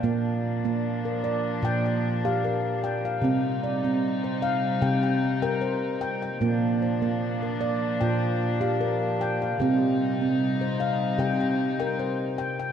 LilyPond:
<<
  \new Staff \with { instrumentName = "Handpan" } { \time 4/4 \key bes \major \tempo 4 = 75 << { g''16 r4 bes'8. r16 g''8 f''16 bes'8. f''16~ | f''16 r16 d''8. c''8. g''16 g''8 g''16 c''8. g''16~ | g''16 r16 c''8. bes'8. g''8. f''16 bes'8. f''16~ | f''16 r4 c''8. r16 g''8 g''16 c''8. g''16 | } \\ { bes8 r16 bes8 r16 d''8 g''8 r16 g'8 r16 g''8 | c'8 r16 c'8 r16 f''8 r8. bes'8 r16 g''8 | bes8 r16 bes8 r16 d''8 r8. g'8 r16 g''8 | c'8 r16 c'8 r16 f''8 g''8 r16 bes'8 r16 g''8 | } >> }
  \new Staff \with { instrumentName = "Handpan" } { \clef bass \time 4/4 \key bes \major bes,2 bes,2 | c2 c2 | bes,2 bes,2 | c2 c2 | }
  \new Staff \with { instrumentName = "String section" } { \clef bass \time 4/4 \key bes \major <f bes d'>1 | <c g ees'>1 | <f bes d'>1 | <c g ees'>1 | }
>>